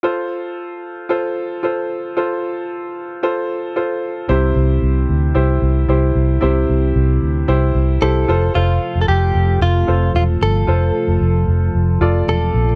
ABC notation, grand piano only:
X:1
M:4/4
L:1/16
Q:1/4=113
K:F
V:1 name="Grand piano"
[FAc]6 z2 [FAc]4 [FAc]4 | [FAc]6 z2 [FAc]4 [FAc]4 | [C,EGc]6 z2 [EGc]4 [EGc]4 | [C,EGc]6 z2 [EGc]4 [EGc]2 [FAc]2 |
[FAc]6 z4 [FAc]4- [FAc] z | [FAc]6 z4 [FAd]4- [FAd] z |]